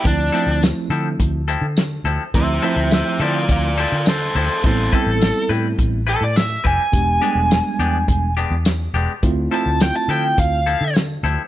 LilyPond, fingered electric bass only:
\new Staff \with { instrumentName = "Fingered electric bass" } { \clef bass \time 4/4 \key d \dorian \tempo 4 = 104 d,8 r16 d,8 r16 d8 d,8. d8. d,16 r16 | d,8 r16 d,8 r16 d8 d,8. d8. d,16 r16 | a,,8 r16 a,,8 r16 a,8 a,,8. a,8. f,,16 r16 | e,,8 r16 e,,8 r16 e,8 e,,8. e,8. e,,16 r16 |
d,8 r16 d,8 r16 d8 d,8. d8. d,16 r16 | }